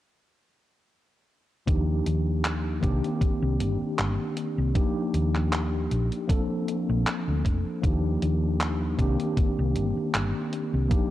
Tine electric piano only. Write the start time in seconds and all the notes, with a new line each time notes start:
1.66 F3 A#3 D4 D#4 G4
2.81 D#3 A#3 C4 D4 G4
4.74 F3 A#3 D4 D#4 G4
6.27 F3 A#3 C4 D4 A4
7.82 F3 A#3 D4 D#4 G4
8.98 D#3 A#3 C4 D4 G4
10.89 F3 A#3 D4 D#4 G4